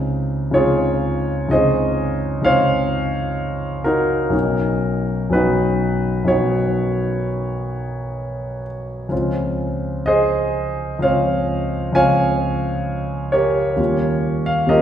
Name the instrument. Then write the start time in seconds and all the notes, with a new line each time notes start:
grand piano
Already playing: C#2 C#3 C4 D#4
0.51 C#2 C#3 C4 D#4 C#5
0.55 F4 G#4
1.48 C#2 C#3 C4 D#4 D#5
1.52 G#4 C5
2.41 C#2 C#3 C4 D#4 F5
2.46 C5 C#5
3.84 D#4 F#4 A#4
4.30 B1 F#3 B3 C#4 D#4
5.30 B1 F#3 B3 C#4 B4
5.34 D#4 F#4
6.24 B1 F#3 B3 C#4 D#4 C#5
6.29 F#4
9.09 C#2 F3 C4 C#4 F4
10.06 G#4 C5 D#5
10.99 C#2 F3 C4 C#4 F4 F5
11.03 C5 C#5
11.92 C#2 F3 C4 C#4 F4 C#5 F5 G#5
13.32 G4 A#4 C#5
13.76 D#2 G3 A#3 C#4 F4
14.46 F5
14.66 D#2 G3 A#3 C#4 F4 A#4 D#5
14.70 G4